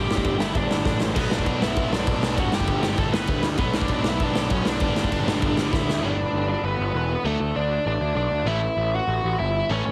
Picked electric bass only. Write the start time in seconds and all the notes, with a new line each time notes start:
0.09 G1
0.25 G1
0.39 G1
0.55 G1
0.70 G1
0.86 A1
1.17 B1
1.46 B1
1.62 B1
1.76 B1
1.92 B1
2.07 B1
2.22 B1
2.38 G1
2.52 G1
2.68 G1
2.83 G1
2.98 G1
3.13 G1
3.28 D2
3.58 B1
3.89 B1
4.05 B1
4.20 B1
4.35 B1
4.50 B1
4.65 B1
4.81 G1
4.95 G1
5.12 G1
5.25 G1
5.42 G1
5.57 G1
5.73 D2
6.02 G1
6.33 G1
6.63 G1
6.79 G1
6.93 E1
7.24 D2
7.40 D2
7.56 D2
7.86 A1
8.00 D2
8.15 B1
8.31 D2
8.44 A1
8.76 A1
9.07 A1
9.23 A1
9.39 G1
9.69 A1
9.87 A1